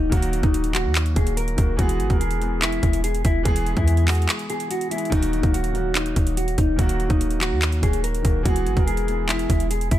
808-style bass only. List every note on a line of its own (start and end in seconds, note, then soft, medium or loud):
0.00 0.11 D#1 loud
0.12 0.42 D#1 loud
0.43 0.86 D#1 loud
0.85 1.15 D#2 loud
1.16 1.56 D#1 loud
1.58 1.78 D#1 loud
1.79 2.01 E1 loud
2.00 2.10 G#1 loud
2.10 2.80 E1 loud
2.83 3.23 E1 loud
3.25 3.45 E1 loud
3.46 3.75 E1 loud
3.77 4.27 E2 loud
5.12 5.42 D#1 loud
5.43 6.13 D#1 loud
6.16 6.56 D#1 loud
6.58 6.78 D#1 loud
6.79 7.09 D#1 loud
7.10 7.53 D#1 loud
7.52 7.81 D#2 loud
7.83 8.23 D#1 loud
8.25 8.45 D#1 loud
8.45 8.68 E1 loud
8.66 8.76 G#1 loud
8.77 9.47 E1 loud
9.50 9.90 E1 loud
9.91 9.99 E1 loud